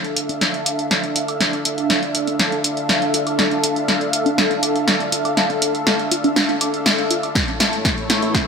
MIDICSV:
0, 0, Header, 1, 5, 480
1, 0, Start_track
1, 0, Key_signature, -1, "minor"
1, 0, Tempo, 495868
1, 1359, Time_signature, 4, 2, 24, 8
1, 8201, End_track
2, 0, Start_track
2, 0, Title_t, "Analog synth pad"
2, 0, Program_c, 0, 89
2, 0, Note_on_c, 0, 62, 83
2, 0, Note_on_c, 0, 69, 74
2, 0, Note_on_c, 0, 76, 75
2, 0, Note_on_c, 0, 77, 89
2, 7081, Note_off_c, 0, 62, 0
2, 7081, Note_off_c, 0, 76, 0
2, 7081, Note_off_c, 0, 77, 0
2, 7115, Note_on_c, 0, 73, 93
2, 7116, Note_on_c, 0, 57, 80
2, 7116, Note_on_c, 0, 64, 74
2, 8201, Note_off_c, 0, 57, 0
2, 8201, Note_off_c, 0, 64, 0
2, 8201, Note_off_c, 0, 69, 0
2, 8201, Note_off_c, 0, 73, 0
2, 8201, End_track
3, 0, Start_track
3, 0, Title_t, "Synth arpeggio sound"
3, 0, Program_c, 1, 84
3, 158, Note_on_c, 1, 65, 73
3, 197, Note_off_c, 1, 65, 0
3, 282, Note_on_c, 1, 62, 95
3, 318, Note_off_c, 1, 62, 0
3, 399, Note_on_c, 1, 62, 78
3, 494, Note_off_c, 1, 62, 0
3, 522, Note_on_c, 1, 62, 74
3, 582, Note_off_c, 1, 62, 0
3, 640, Note_on_c, 1, 86, 77
3, 703, Note_off_c, 1, 86, 0
3, 879, Note_on_c, 1, 81, 82
3, 917, Note_off_c, 1, 81, 0
3, 1002, Note_on_c, 1, 62, 70
3, 1038, Note_off_c, 1, 62, 0
3, 1120, Note_on_c, 1, 65, 73
3, 1183, Note_off_c, 1, 65, 0
3, 1243, Note_on_c, 1, 86, 98
3, 1303, Note_off_c, 1, 86, 0
3, 1360, Note_on_c, 1, 62, 76
3, 1454, Note_off_c, 1, 62, 0
3, 1482, Note_on_c, 1, 62, 76
3, 1542, Note_off_c, 1, 62, 0
3, 1599, Note_on_c, 1, 62, 75
3, 1663, Note_off_c, 1, 62, 0
3, 2078, Note_on_c, 1, 65, 70
3, 2117, Note_off_c, 1, 65, 0
3, 2202, Note_on_c, 1, 62, 102
3, 2238, Note_off_c, 1, 62, 0
3, 2318, Note_on_c, 1, 62, 82
3, 2414, Note_off_c, 1, 62, 0
3, 2441, Note_on_c, 1, 62, 77
3, 2502, Note_off_c, 1, 62, 0
3, 2558, Note_on_c, 1, 86, 76
3, 2622, Note_off_c, 1, 86, 0
3, 2799, Note_on_c, 1, 81, 77
3, 2837, Note_off_c, 1, 81, 0
3, 2922, Note_on_c, 1, 62, 72
3, 2958, Note_off_c, 1, 62, 0
3, 3038, Note_on_c, 1, 65, 75
3, 3102, Note_off_c, 1, 65, 0
3, 3161, Note_on_c, 1, 86, 97
3, 3222, Note_off_c, 1, 86, 0
3, 3278, Note_on_c, 1, 62, 81
3, 3374, Note_off_c, 1, 62, 0
3, 3401, Note_on_c, 1, 62, 76
3, 3462, Note_off_c, 1, 62, 0
3, 3519, Note_on_c, 1, 62, 74
3, 3582, Note_off_c, 1, 62, 0
3, 3758, Note_on_c, 1, 81, 83
3, 3797, Note_off_c, 1, 81, 0
3, 3998, Note_on_c, 1, 65, 73
3, 4037, Note_off_c, 1, 65, 0
3, 4121, Note_on_c, 1, 62, 97
3, 4158, Note_off_c, 1, 62, 0
3, 4237, Note_on_c, 1, 62, 81
3, 4333, Note_off_c, 1, 62, 0
3, 4361, Note_on_c, 1, 62, 74
3, 4422, Note_off_c, 1, 62, 0
3, 4479, Note_on_c, 1, 86, 78
3, 4542, Note_off_c, 1, 86, 0
3, 4718, Note_on_c, 1, 81, 81
3, 4757, Note_off_c, 1, 81, 0
3, 4840, Note_on_c, 1, 62, 72
3, 4877, Note_off_c, 1, 62, 0
3, 4958, Note_on_c, 1, 65, 79
3, 5022, Note_off_c, 1, 65, 0
3, 5081, Note_on_c, 1, 86, 97
3, 5142, Note_off_c, 1, 86, 0
3, 5199, Note_on_c, 1, 62, 80
3, 5294, Note_off_c, 1, 62, 0
3, 5323, Note_on_c, 1, 62, 76
3, 5383, Note_off_c, 1, 62, 0
3, 5439, Note_on_c, 1, 62, 78
3, 5502, Note_off_c, 1, 62, 0
3, 5678, Note_on_c, 1, 81, 82
3, 5717, Note_off_c, 1, 81, 0
3, 5919, Note_on_c, 1, 65, 74
3, 5957, Note_off_c, 1, 65, 0
3, 6042, Note_on_c, 1, 62, 100
3, 6078, Note_off_c, 1, 62, 0
3, 6159, Note_on_c, 1, 62, 81
3, 6254, Note_off_c, 1, 62, 0
3, 6282, Note_on_c, 1, 62, 73
3, 6342, Note_off_c, 1, 62, 0
3, 6399, Note_on_c, 1, 86, 78
3, 6463, Note_off_c, 1, 86, 0
3, 6638, Note_on_c, 1, 81, 81
3, 6677, Note_off_c, 1, 81, 0
3, 6762, Note_on_c, 1, 62, 71
3, 6798, Note_off_c, 1, 62, 0
3, 6877, Note_on_c, 1, 65, 77
3, 6942, Note_off_c, 1, 65, 0
3, 7001, Note_on_c, 1, 86, 101
3, 7062, Note_off_c, 1, 86, 0
3, 7118, Note_on_c, 1, 61, 78
3, 7214, Note_off_c, 1, 61, 0
3, 7241, Note_on_c, 1, 61, 80
3, 7302, Note_off_c, 1, 61, 0
3, 7357, Note_on_c, 1, 61, 74
3, 7422, Note_off_c, 1, 61, 0
3, 7598, Note_on_c, 1, 81, 83
3, 7637, Note_off_c, 1, 81, 0
3, 7839, Note_on_c, 1, 64, 72
3, 7877, Note_off_c, 1, 64, 0
3, 7962, Note_on_c, 1, 64, 98
3, 8022, Note_off_c, 1, 64, 0
3, 8078, Note_on_c, 1, 61, 81
3, 8174, Note_off_c, 1, 61, 0
3, 8201, End_track
4, 0, Start_track
4, 0, Title_t, "Riser"
4, 0, Program_c, 2, 103
4, 7118, Note_on_c, 2, 60, 75
4, 8201, Note_off_c, 2, 60, 0
4, 8201, End_track
5, 0, Start_track
5, 0, Title_t, "Drums"
5, 44, Note_on_c, 9, 42, 21
5, 140, Note_off_c, 9, 42, 0
5, 160, Note_on_c, 9, 42, 84
5, 257, Note_off_c, 9, 42, 0
5, 284, Note_on_c, 9, 42, 35
5, 380, Note_off_c, 9, 42, 0
5, 400, Note_on_c, 9, 38, 48
5, 400, Note_on_c, 9, 42, 44
5, 497, Note_off_c, 9, 38, 0
5, 497, Note_off_c, 9, 42, 0
5, 524, Note_on_c, 9, 42, 23
5, 620, Note_off_c, 9, 42, 0
5, 641, Note_on_c, 9, 42, 96
5, 737, Note_off_c, 9, 42, 0
5, 764, Note_on_c, 9, 42, 32
5, 861, Note_off_c, 9, 42, 0
5, 880, Note_on_c, 9, 38, 48
5, 880, Note_on_c, 9, 42, 42
5, 977, Note_off_c, 9, 38, 0
5, 977, Note_off_c, 9, 42, 0
5, 1003, Note_on_c, 9, 42, 21
5, 1100, Note_off_c, 9, 42, 0
5, 1120, Note_on_c, 9, 42, 86
5, 1217, Note_off_c, 9, 42, 0
5, 1243, Note_on_c, 9, 42, 33
5, 1340, Note_off_c, 9, 42, 0
5, 1360, Note_on_c, 9, 38, 46
5, 1360, Note_on_c, 9, 42, 42
5, 1457, Note_off_c, 9, 38, 0
5, 1457, Note_off_c, 9, 42, 0
5, 1484, Note_on_c, 9, 42, 21
5, 1580, Note_off_c, 9, 42, 0
5, 1600, Note_on_c, 9, 42, 101
5, 1696, Note_off_c, 9, 42, 0
5, 1723, Note_on_c, 9, 42, 31
5, 1819, Note_off_c, 9, 42, 0
5, 1839, Note_on_c, 9, 38, 52
5, 1839, Note_on_c, 9, 42, 40
5, 1935, Note_off_c, 9, 38, 0
5, 1935, Note_off_c, 9, 42, 0
5, 1961, Note_on_c, 9, 42, 21
5, 2058, Note_off_c, 9, 42, 0
5, 2078, Note_on_c, 9, 42, 88
5, 2175, Note_off_c, 9, 42, 0
5, 2202, Note_on_c, 9, 42, 34
5, 2298, Note_off_c, 9, 42, 0
5, 2318, Note_on_c, 9, 38, 51
5, 2318, Note_on_c, 9, 42, 44
5, 2415, Note_off_c, 9, 38, 0
5, 2415, Note_off_c, 9, 42, 0
5, 2442, Note_on_c, 9, 42, 22
5, 2538, Note_off_c, 9, 42, 0
5, 2558, Note_on_c, 9, 42, 103
5, 2655, Note_off_c, 9, 42, 0
5, 2682, Note_on_c, 9, 42, 31
5, 2778, Note_off_c, 9, 42, 0
5, 2799, Note_on_c, 9, 38, 54
5, 2799, Note_on_c, 9, 42, 44
5, 2896, Note_off_c, 9, 38, 0
5, 2896, Note_off_c, 9, 42, 0
5, 2922, Note_on_c, 9, 42, 21
5, 3019, Note_off_c, 9, 42, 0
5, 3039, Note_on_c, 9, 42, 89
5, 3136, Note_off_c, 9, 42, 0
5, 3162, Note_on_c, 9, 42, 33
5, 3259, Note_off_c, 9, 42, 0
5, 3279, Note_on_c, 9, 38, 54
5, 3279, Note_on_c, 9, 42, 39
5, 3376, Note_off_c, 9, 38, 0
5, 3376, Note_off_c, 9, 42, 0
5, 3402, Note_on_c, 9, 42, 20
5, 3499, Note_off_c, 9, 42, 0
5, 3519, Note_on_c, 9, 42, 108
5, 3616, Note_off_c, 9, 42, 0
5, 3643, Note_on_c, 9, 42, 30
5, 3739, Note_off_c, 9, 42, 0
5, 3760, Note_on_c, 9, 38, 57
5, 3760, Note_on_c, 9, 42, 40
5, 3856, Note_off_c, 9, 38, 0
5, 3856, Note_off_c, 9, 42, 0
5, 3883, Note_on_c, 9, 42, 21
5, 3979, Note_off_c, 9, 42, 0
5, 4000, Note_on_c, 9, 42, 93
5, 4097, Note_off_c, 9, 42, 0
5, 4124, Note_on_c, 9, 42, 31
5, 4220, Note_off_c, 9, 42, 0
5, 4241, Note_on_c, 9, 38, 61
5, 4241, Note_on_c, 9, 42, 43
5, 4338, Note_off_c, 9, 38, 0
5, 4338, Note_off_c, 9, 42, 0
5, 4364, Note_on_c, 9, 42, 23
5, 4461, Note_off_c, 9, 42, 0
5, 4480, Note_on_c, 9, 42, 104
5, 4577, Note_off_c, 9, 42, 0
5, 4604, Note_on_c, 9, 42, 31
5, 4701, Note_off_c, 9, 42, 0
5, 4720, Note_on_c, 9, 38, 59
5, 4720, Note_on_c, 9, 42, 42
5, 4817, Note_off_c, 9, 38, 0
5, 4817, Note_off_c, 9, 42, 0
5, 4843, Note_on_c, 9, 42, 21
5, 4940, Note_off_c, 9, 42, 0
5, 4960, Note_on_c, 9, 42, 93
5, 5057, Note_off_c, 9, 42, 0
5, 5083, Note_on_c, 9, 42, 33
5, 5180, Note_off_c, 9, 42, 0
5, 5200, Note_on_c, 9, 38, 62
5, 5200, Note_on_c, 9, 42, 41
5, 5296, Note_off_c, 9, 38, 0
5, 5296, Note_off_c, 9, 42, 0
5, 5323, Note_on_c, 9, 42, 19
5, 5420, Note_off_c, 9, 42, 0
5, 5439, Note_on_c, 9, 42, 108
5, 5536, Note_off_c, 9, 42, 0
5, 5563, Note_on_c, 9, 42, 29
5, 5660, Note_off_c, 9, 42, 0
5, 5679, Note_on_c, 9, 38, 64
5, 5679, Note_on_c, 9, 42, 40
5, 5776, Note_off_c, 9, 38, 0
5, 5776, Note_off_c, 9, 42, 0
5, 5803, Note_on_c, 9, 42, 20
5, 5900, Note_off_c, 9, 42, 0
5, 5919, Note_on_c, 9, 42, 93
5, 6016, Note_off_c, 9, 42, 0
5, 6042, Note_on_c, 9, 42, 32
5, 6139, Note_off_c, 9, 42, 0
5, 6160, Note_on_c, 9, 38, 69
5, 6160, Note_on_c, 9, 42, 43
5, 6257, Note_off_c, 9, 38, 0
5, 6257, Note_off_c, 9, 42, 0
5, 6283, Note_on_c, 9, 42, 22
5, 6380, Note_off_c, 9, 42, 0
5, 6398, Note_on_c, 9, 42, 100
5, 6495, Note_off_c, 9, 42, 0
5, 6522, Note_on_c, 9, 42, 30
5, 6619, Note_off_c, 9, 42, 0
5, 6640, Note_on_c, 9, 38, 68
5, 6640, Note_on_c, 9, 42, 41
5, 6736, Note_off_c, 9, 38, 0
5, 6736, Note_off_c, 9, 42, 0
5, 6762, Note_on_c, 9, 42, 21
5, 6859, Note_off_c, 9, 42, 0
5, 6878, Note_on_c, 9, 42, 94
5, 6975, Note_off_c, 9, 42, 0
5, 7002, Note_on_c, 9, 42, 31
5, 7099, Note_off_c, 9, 42, 0
5, 7117, Note_on_c, 9, 36, 116
5, 7119, Note_on_c, 9, 38, 68
5, 7119, Note_on_c, 9, 42, 40
5, 7214, Note_off_c, 9, 36, 0
5, 7216, Note_off_c, 9, 38, 0
5, 7216, Note_off_c, 9, 42, 0
5, 7242, Note_on_c, 9, 42, 21
5, 7339, Note_off_c, 9, 42, 0
5, 7358, Note_on_c, 9, 38, 74
5, 7358, Note_on_c, 9, 42, 104
5, 7455, Note_off_c, 9, 38, 0
5, 7455, Note_off_c, 9, 42, 0
5, 7482, Note_on_c, 9, 42, 29
5, 7579, Note_off_c, 9, 42, 0
5, 7598, Note_on_c, 9, 36, 117
5, 7599, Note_on_c, 9, 38, 74
5, 7599, Note_on_c, 9, 42, 40
5, 7694, Note_off_c, 9, 36, 0
5, 7695, Note_off_c, 9, 38, 0
5, 7695, Note_off_c, 9, 42, 0
5, 7722, Note_on_c, 9, 42, 20
5, 7819, Note_off_c, 9, 42, 0
5, 7839, Note_on_c, 9, 38, 72
5, 7839, Note_on_c, 9, 42, 90
5, 7935, Note_off_c, 9, 38, 0
5, 7935, Note_off_c, 9, 42, 0
5, 7962, Note_on_c, 9, 42, 33
5, 8059, Note_off_c, 9, 42, 0
5, 8077, Note_on_c, 9, 36, 114
5, 8079, Note_on_c, 9, 38, 75
5, 8079, Note_on_c, 9, 42, 43
5, 8174, Note_off_c, 9, 36, 0
5, 8176, Note_off_c, 9, 38, 0
5, 8176, Note_off_c, 9, 42, 0
5, 8201, End_track
0, 0, End_of_file